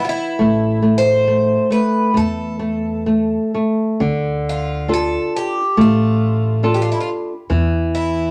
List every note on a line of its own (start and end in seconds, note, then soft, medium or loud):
0.00 0.39 B3 medium
0.05 0.09 F4 medium
0.09 1.00 E4 medium
0.39 1.55 A1 medium
0.39 0.81 A3 medium
0.82 1.25 A3 soft
0.98 1.72 C5 medium
1.27 1.69 A3 soft
1.70 2.13 A3 soft
1.70 2.17 B4 medium
2.14 3.36 E2 medium
2.14 2.58 A3 soft
2.14 3.52 A4 medium
2.59 3.05 A3 soft
3.06 3.53 A3 soft
3.54 3.99 A3 soft
4.00 5.16 D2 medium
4.00 4.87 D3 medium
4.49 4.93 F4 medium
4.88 5.59 D4 soft
4.88 5.60 F4 soft
4.88 5.60 A4 soft
4.94 5.33 A4 medium
5.37 5.81 G4 medium
5.77 6.90 A1 medium
5.77 6.61 A3 medium
5.81 6.69 F4 medium
6.63 7.32 D4 soft
6.63 7.32 F4 soft
6.63 7.32 A4 soft
6.74 6.81 G4 medium
6.82 6.90 F4 medium
6.92 6.99 E4 medium
7.01 7.08 F4 medium
7.50 8.31 E2 medium
7.50 8.31 E3 medium
7.95 8.31 E4 medium